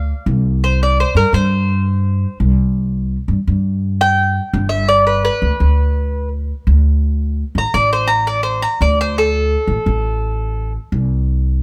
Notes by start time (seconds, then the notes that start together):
Already playing: D2 F5
0.26 C2
0.64 C5
0.83 D5
1.00 C5
1.15 G2 A#4
1.33 G2 C5
2.40 C2
3.28 G2
3.47 G2
4.01 G5
4.53 G1
4.69 E5
4.88 D5
5.07 B4
5.25 B4
5.42 D2
5.60 D2
6.67 D2
7.55 A1 A#5
7.74 A1 D5
7.93 C5
8.07 A#5
8.27 D5
8.43 C5
8.62 A#5
8.81 D2 D5
9.01 C5
9.18 A4
9.67 A1
9.86 A1
10.92 C2